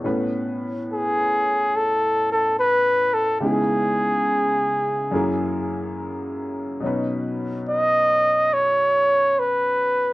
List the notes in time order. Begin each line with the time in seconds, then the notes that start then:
0.04 A2 A3 B3 C#4 B4
0.92 G#4
1.76 A4
2.32 A4
2.59 B4
3.14 A4
3.41 C#3 G#3 B3 D#4 G#4
3.45 E4
5.11 F#2 F#3 A#3 E4 G#4
6.80 B2 F#3 C#4
6.85 D#4 B4
7.69 D#5
8.53 C#5
9.39 B4